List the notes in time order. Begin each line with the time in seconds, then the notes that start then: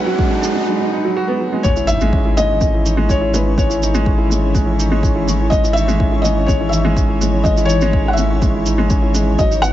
Already playing: F#3 G#3 B3 D#4 F#4 B4 F#5, riser
0.06 F#3
0.19 G#3, kick
0.31 D#4
0.42 F#3, shaker
0.55 G#3
0.67 F#3
0.80 D#4
0.92 D#4
1.05 F#3
1.16 F#4
1.28 B3
1.40 F#3
1.53 G#3
1.63 G#1 E3 G#3 C#5, kick, impact, shaker
1.76 E4, shaker
1.87 D#4 E5, shaker
2.01 G#3, shaker
2.13 C#4, kick
2.25 E4
2.37 G#3 D#5, shaker
2.49 C#4
2.61 G#3, kick, shaker
2.74 E4
2.86 D#4, shaker
2.97 G#3
3.09 C#4 C#5, kick, shaker
3.21 E4
3.34 G#3 B4, shaker
3.46 C#4
3.58 G#3 C#5, kick, shaker
3.69 E4, shaker
3.83 D#4, shaker
3.94 G#3, shaker
4.06 C#4, kick
4.18 E4
4.30 G#3, shaker
4.43 C#4
4.55 G#3, kick, shaker
4.66 E4
4.79 D#4, shaker
4.92 G#3
5.03 C#4, kick, shaker
5.16 E4
5.28 G#3, shaker
5.40 C#4
5.50 G#3 D#5, kick, shaker
5.64 E4, shaker
5.73 D#4 E5, shaker
5.88 G#3, shaker
6.00 C#4, kick
6.12 E4
6.22 G#3 D#5, shaker
6.37 C#4
6.46 G#3 C#5, kick, shaker
6.61 E4
6.69 D#4 E5, shaker
6.85 G#3
6.97 C#4, kick, shaker
7.09 E4
7.21 G#3, shaker
7.33 C#4
7.44 G#3 D#5, kick, shaker
7.57 E4, shaker
7.65 C#5, shaker
7.70 D#4
7.81 G#3, shaker
7.93 C#4, kick
8.06 E4 F#5
8.13 E5
8.17 G#3, shaker
8.31 C#4
8.42 G#3, kick, shaker
8.55 E4
8.66 D#4, shaker
8.78 G#3
8.90 C#4, kick, shaker
9.02 E4
9.14 G#3, shaker
9.26 C#4
9.39 G#1 F#3 G#3 F#4 B4 D#5, kick, shaker
9.51 D#4, shaker
9.62 B3 F#5, shaker